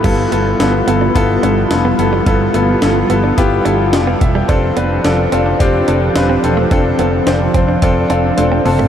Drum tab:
CC |x---------------|----------------|----------------|----------------|
HH |x-x-x-x-x-x-x-x-|x-x-x-x-x-x-x-x-|x-x-x-x-x-x-x-x-|x-x-x-x-x-x-x-o-|
SD |----o-------o---|----o-------o---|----o-------o---|----o-----------|
T1 |----------------|----------------|----------------|------------o---|
T2 |----------------|----------------|----------------|--------------o-|
FT |----------------|----------------|----------------|---------------o|
BD |o-------o-------|o-------o-----o-|o-------o-------|o-----o-o-------|